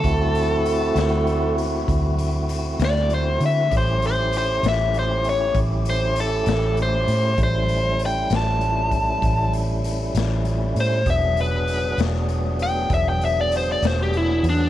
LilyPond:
<<
  \new Staff \with { instrumentName = "Overdriven electric guitar" } { \time 12/8 \key a \mixolydian \tempo 4. = 65 a'2~ a'8 r2 d''8 c''8 e''8 | c''8 c''8 c''8 e''8 c''8 cis''8 r8 c''8 a'4 c''4 | c''4 g''8 a''2 r2 c''8 | e''8 b'4 r4 g''8 e''16 g''16 e''16 d''16 c''16 d''16 c''16 g'16 e'8 d'8 | }
  \new Staff \with { instrumentName = "Tonewheel organ" } { \time 12/8 \key a \mixolydian <a c' e' fis'>1. | <a cis' e' g'>1. | <g a cis' e'>1. | <fis b d' gis'>1. | }
  \new Staff \with { instrumentName = "Fingered electric bass" } { \clef bass \time 12/8 \key a \mixolydian d,4. d,4. d,4. d,4 d8 | a,,4. a,,4. a,,4. a,,4 a,8 | a,,4. a,,4. a,,4. a,,4 a,8 | e,,4. e,,4. e,,4. e,,4 e,8 | }
  \new DrumStaff \with { instrumentName = "Drums" } \drummode { \time 12/8 <hh bd>8 hh8 hh8 <hh sn>8 hh8 hh8 <hh bd>8 hh8 hh8 <hh sn>8 hh8 hh8 | <hh bd>8 hh8 hh8 <hh sn>8 hh8 hh8 <hh bd>8 hh8 hh8 <hh sn>8 hh8 hh8 | <hh bd>8 hh8 hh8 <hh sn>8 hh8 <hh bd>8 <hh bd>8 hh8 hh8 <hh sn>8 hh8 hh8 | <hh bd>8 hh8 hh8 <hh sn>8 hh8 hh8 <hh bd>8 hh8 hh8 <hh sn>8 hh8 hh8 | }
>>